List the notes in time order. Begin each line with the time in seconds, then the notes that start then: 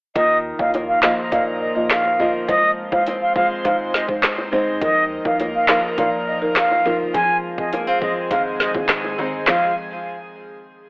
0.15 D#2 D#3 F3 A#3 D#4 F4 A#4 D#5, kick, closed hi-hat, high bongo
0.59 D#2 A#3 F4 D#5 F5, kick, high bongo
0.74 A#3, closed hi-hat, high bongo
0.88 F5
1.03 F3 A#3 F4 D#5 F5, snare, clap, high bongo
1.31 A#1 A#2 F3 A#3 F4 D#5 F5, kick, closed hi-hat, high bongo
1.61 D#5
1.75 A#1 A#3 F4 D#5
1.90 F5, snare, clap, closed hi-hat
2.05 high bongo
2.19 G1 F3 A#3 D#4 F4 D#5, low bongo
2.48 F1 F3 G#3 C4 F4 C5 D#5, kick, closed hi-hat, high bongo
2.92 F1 G#3 F4 C5 F5, kick, high bongo
3.06 C4, closed hi-hat, high bongo
3.21 F5
3.36 G#3 F4 C5 F5, kick, high bongo
3.65 G#1 G#2 G#3 D#4 C5 F5, kick, closed hi-hat, high bongo
3.94 D#5, snare
4.08 G#3 D#4 C5, kick
4.23 snare, clap, closed hi-hat
4.38 high bongo
4.52 G1 G#3 C4 D#4 C5, low bongo
4.81 D#2 D#3 F3 A#3 D#4 A#4 D#5, kick, closed hi-hat, high bongo
5.25 D#2 F3 D#4 A#4 F5, kick, high bongo
5.40 A#3, closed hi-hat, high bongo
5.55 F5
5.68 F3 D#4 A#4 F5, snare, clap, high bongo
5.98 A#1 A#2 F3 D#4 A#4 F5, kick, closed hi-hat, high bongo
6.27 D#5
6.41 A#1 F3 D#4 A#4
6.56 F5, snare, clap, closed hi-hat
6.71 high bongo
6.85 G1 F3 A#3 D#4 F4 A#4, low bongo
7.14 F1 F3 G#3 C4 G#4 G#5, kick, closed hi-hat, high bongo
7.58 F1 F3 C4 G#4 D#5, kick
7.73 A#3, closed hi-hat, high bongo
7.87 C4 F5
8.01 F3 G#3 C4 G#4 D#5, kick, high bongo
8.30 G#1 G#2 D#3 G#3 C4 G#4 F5, kick, closed hi-hat, high bongo
8.60 D#5, snare
8.74 D#3 C4 G#4, kick, high bongo
8.89 cross-stick, snare, clap, closed hi-hat
9.04 high bongo
9.18 G1 D#3 G#3 C4 D#4 G#4, low bongo
9.47 F1 F3 G#3 C4 F4 G#4 F5, snare, clap, high bongo